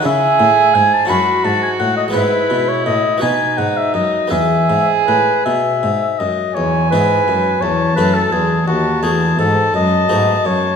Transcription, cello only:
\new Staff \with { instrumentName = "Cello" } { \clef bass \time 6/8 \key e \major \tempo 4. = 57 cis8 a,8 gis,8 fis,8 gis,8 a,8 | gis,8 b,8 a,8 b,8 gis,8 fis,8 | e,8 gis,8 a,8 b,8 gis,8 fis,8 | e,8 gis,8 fis,8 e,8 fis,8 e,8 |
dis,8 e,8 gis,8 fis,8 gis,8 fis,8 | }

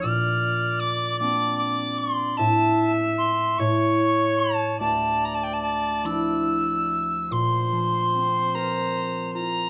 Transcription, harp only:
\new Staff \with { instrumentName = "Harp" } { \time 6/8 \key bes \lydian \tempo 4. = 50 bes,4. <bes c' d'>4. | a,4. a,4. | d,4. <f d' e'>4. | bes,8 f8 c'8 bes'4 f'8 | }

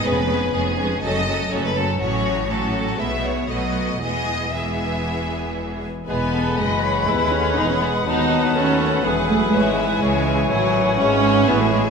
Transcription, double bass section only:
\new Staff \with { instrumentName = "Double bass section" } { \clef bass \time 4/4 \key e \major \tempo 4 = 122 eis,,4 eis,,4 fis,,4 fis,,4 | a,,2 b,,4 b,,4 | e,,2.~ e,,8 r8 | e,,4 fis,,4 dis,4 e,,4 |
dis,4 dis,4 e,,4 gis,,4 | cis,4 a,,4 gis,,4 a,,4 | }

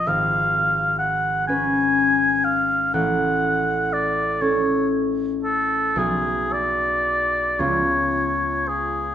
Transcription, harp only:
\new Staff \with { instrumentName = "Harp" } { \time 6/8 \key fis \minor \tempo 4. = 40 <gis,, f'>4. <cis' b'>4. | a,,4. <cis' a'>4. | <b,, b gis'>4. <cis, b eis'>4. | }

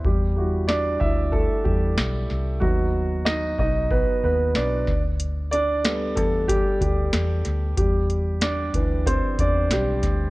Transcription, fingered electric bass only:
\new Staff \with { instrumentName = "Fingered electric bass" } { \clef bass \time 4/4 \key e \minor \tempo 4 = 93 e,4. d,8. r16 e,8 b,,8 c,8 | dis,4. b,,8. r16 dis,8 b,,8 d,8~ | d,4. e,8. r16 d,8 e,8 d,8 | e,4. d,8. r16 e,8 b,,8 d,8 | }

